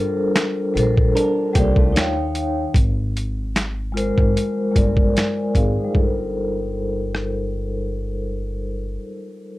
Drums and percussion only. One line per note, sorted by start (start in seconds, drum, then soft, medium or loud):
0.36 finger snap medium
0.36 snare loud
0.36 closed hi-hat medium
0.77 closed hi-hat medium
0.98 kick medium
1.17 closed hi-hat medium
1.55 kick medium
1.55 closed hi-hat medium
1.76 kick medium
1.96 finger snap medium
1.96 snare loud
1.96 closed hi-hat medium
2.35 closed hi-hat medium
2.74 kick loud
2.74 closed hi-hat medium
3.17 closed hi-hat medium
3.56 finger snap medium
3.56 snare medium
3.56 closed hi-hat medium
3.97 closed hi-hat medium
4.18 kick medium
4.37 closed hi-hat medium
4.76 kick medium
4.76 closed hi-hat medium
4.97 kick medium
5.17 finger snap medium
5.17 snare loud
5.17 closed hi-hat medium
5.55 kick medium
5.55 closed hi-hat medium
5.95 kick medium
7.15 cross-stick medium